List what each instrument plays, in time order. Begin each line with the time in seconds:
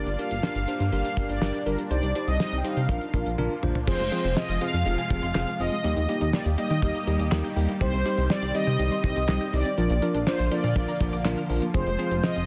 Already playing: analog synth pad G3 A#3 D4 F4, analog polysynth D5
0.06 analog synth bass G1, closed hi-hat
0.19 tine electric piano D4 G4 A#4, analog polysynth F5, closed hi-hat
0.31 analog synth bass G1, closed hi-hat
0.43 tine electric piano D4 G4 A#4, snare
0.56 analog synth bass G1, closed hi-hat
0.68 tine electric piano D4 G4 C5, closed hi-hat
0.80 analog synth bass G2, closed hi-hat
0.92 analog synth bass G1, tine electric piano D4 G4 A#4, analog polysynth F5, closed hi-hat
1.05 closed hi-hat
1.17 analog synth bass G1, tine electric piano D4 G4 A#4, kick, closed hi-hat
1.29 analog synth bass G1, analog polysynth D5, closed hi-hat
1.42 analog synth bass G1, tine electric piano D4 G4 A#4, snare
1.54 closed hi-hat
1.66 analog synth bass G1, tine electric piano D4 G4 A#4, analog polysynth A#4, closed hi-hat
1.78 closed hi-hat
1.91 analog synth bass C2, analog synth pad G3 C4 D#4, tine electric piano D#4 G4 C5, analog polysynth D5, closed hi-hat
2.03 analog synth bass C2, closed hi-hat
2.15 tine electric piano D#4 G4 C5, closed hi-hat
2.28 analog synth bass C2, analog polysynth D#5, closed hi-hat
2.40 tine electric piano D#4 G4 C5, snare
2.52 analog synth bass C2, closed hi-hat
2.57 analog polysynth G5
2.64 tine electric piano D#4 G4 C5, analog polysynth F5, closed hi-hat
2.77 analog synth bass C3, closed hi-hat
2.89 analog synth bass A#1, analog synth pad F3 A#3 F4, tine electric piano D4 F4 A#4, kick, closed hi-hat
3.01 closed hi-hat
3.14 analog synth bass A#1, tine electric piano D4 F4 A#4, kick, closed hi-hat
3.26 analog synth bass A#1, closed hi-hat
3.38 analog synth bass A#1, tine electric piano D4 F4 A#4, high tom
3.63 analog synth bass A#1, tine electric piano D4 F4 C5, mid tom
3.75 floor tom
3.87 analog synth bass F1, analog synth pad C3 F3 G#3 F4, synth pluck F3, tine electric piano C4 F4 G#4, analog polysynth C5, kick, crash
4.00 analog synth bass F1, synth pluck G#3, closed hi-hat
4.12 synth pluck F3, tine electric piano C4 F4 G#4, closed hi-hat
4.24 analog synth bass F1, synth pluck C4, closed hi-hat
4.37 synth pluck F3, tine electric piano C4 F4 G#4, analog polysynth D#5, snare
4.49 analog synth bass F1, synth pluck F4, closed hi-hat
4.61 synth pluck F3, tine electric piano C4 F4 G#4, analog polysynth F5, closed hi-hat
4.74 analog synth bass F2, synth pluck F5, closed hi-hat
4.86 analog synth bass F1, synth pluck F3, tine electric piano C4 F4 G#4, closed hi-hat
4.98 synth pluck G#5, closed hi-hat
5.10 analog synth bass F1, synth pluck F3, tine electric piano C4 F4 G#4, analog polysynth F5, kick, closed hi-hat
5.23 analog synth bass F1, synth pluck C6, closed hi-hat
5.35 analog synth bass F1, synth pluck F3, tine electric piano C4 F4 G#4, snare, clap
5.47 synth pluck F6, closed hi-hat
5.60 analog synth bass F1, synth pluck F3, tine electric piano C4 F4 G#4, analog polysynth D#5, open hi-hat
5.72 synth pluck G#3, closed hi-hat
5.84 analog synth bass D#2, analog synth pad D#3 G3 A#3 G4, synth pluck G3, tine electric piano A#3 D#4 G4, closed hi-hat
5.96 analog synth bass D#2, synth pluck A#3, closed hi-hat
6.09 synth pluck G3, tine electric piano A#3 D#4 G4, closed hi-hat
6.21 analog synth bass D#2, synth pluck D#4, closed hi-hat
6.33 synth pluck G3, tine electric piano A#3 D#4 G4, analog polysynth D5, snare
6.46 analog synth bass D#2, synth pluck G4, closed hi-hat
6.58 synth pluck G3, tine electric piano A#3 D#4 G4, analog polysynth D#5, closed hi-hat
6.70 analog synth bass D#3, synth pluck G5, closed hi-hat
6.82 analog synth bass D#2, synth pluck G3, tine electric piano A#3 D#4 G4, kick, closed hi-hat
6.95 synth pluck A#5, closed hi-hat
7.07 analog synth bass D#2, synth pluck G3, tine electric piano A#3 D#4 G4, closed hi-hat
7.19 analog synth bass D#2, synth pluck D#6, closed hi-hat
7.32 analog synth bass D#2, synth pluck G3, tine electric piano A#3 D#4 G4, snare, clap
7.44 synth pluck G6, closed hi-hat
7.56 analog synth bass D#2, synth pluck G3, tine electric piano A#3 D#4 G4, open hi-hat
7.69 synth pluck A#3, closed hi-hat
7.81 analog synth bass C2, synth pluck G3, tine electric piano C4 D#4 G4, analog synth pad C4, analog polysynth C5, kick, closed hi-hat
7.93 analog synth bass C2, synth pluck C4, closed hi-hat
8.06 synth pluck G3, tine electric piano C4 D#4 G4, closed hi-hat
8.18 analog synth bass C2, synth pluck D#4, closed hi-hat
8.30 synth pluck G3, tine electric piano C4 D#4 G4, analog polysynth D5, snare
8.42 analog synth bass C2, synth pluck G4, closed hi-hat
8.55 synth pluck G3, tine electric piano C4 D#4 G4, analog polysynth D#5, closed hi-hat
8.67 analog synth bass C3, synth pluck G5, closed hi-hat
8.79 analog synth bass C2, synth pluck G3, tine electric piano C4 D#4 G4, closed hi-hat
8.91 synth pluck C6, closed hi-hat
9.04 analog synth bass C2, synth pluck G3, tine electric piano C4 D#4 G4, analog polysynth D#5, kick, closed hi-hat
9.16 analog synth bass C2, synth pluck D#6, closed hi-hat
9.28 analog synth bass C2, synth pluck G3, tine electric piano C4 D#4 G4, snare, clap
9.41 synth pluck G6, closed hi-hat
9.53 analog synth bass C2, synth pluck G3, tine electric piano C4 D#4 G4, analog polysynth D5, open hi-hat
9.65 synth pluck C4, closed hi-hat
9.78 analog synth bass A#1, analog synth pad D3 F3 A#3 F4, synth pluck F3, tine electric piano D4 F4 A#4, closed hi-hat
9.90 analog synth bass A#1, synth pluck A#3, closed hi-hat
10.02 synth pluck F3, tine electric piano D4 F4 A#4, closed hi-hat
10.14 analog synth bass A#1, synth pluck D4, closed hi-hat
10.27 synth pluck F3, tine electric piano D4 F4 C5, analog polysynth C5, snare
10.39 analog synth bass A#1, synth pluck F4, closed hi-hat
10.51 synth pluck F3, tine electric piano D4 F4 A#4, analog polysynth D5, closed hi-hat
10.64 analog synth bass A#2, synth pluck F5, closed hi-hat
10.76 analog synth bass A#1, synth pluck F3, tine electric piano D4 F4 A#4, kick, closed hi-hat
10.88 synth pluck A#5, closed hi-hat
11.01 analog synth bass A#1, synth pluck F3, tine electric piano D4 F4 A#4, kick, closed hi-hat
11.13 analog synth bass A#1, synth pluck D6, closed hi-hat
11.25 analog synth bass A#1, synth pluck F3, tine electric piano D4 F4 A#4, snare, clap
11.38 synth pluck F6, closed hi-hat
11.50 analog synth bass A#1, synth pluck F3, tine electric piano D4 F4 A#4, open hi-hat
11.62 synth pluck A#3, closed hi-hat
11.74 analog synth bass F1, analog synth pad C3 G#3 F4, synth pluck F3, tine electric piano C4 F4 G#4, analog polysynth C5, kick, closed hi-hat
11.87 analog synth bass F1, synth pluck G#3, closed hi-hat
11.99 synth pluck F3, tine electric piano C4 F4 G#4, closed hi-hat
12.11 analog synth bass F1, synth pluck C4, closed hi-hat
12.23 synth pluck F3, tine electric piano C4 F4 G#4, analog polysynth D#5, snare
12.36 analog synth bass F1, synth pluck F4, closed hi-hat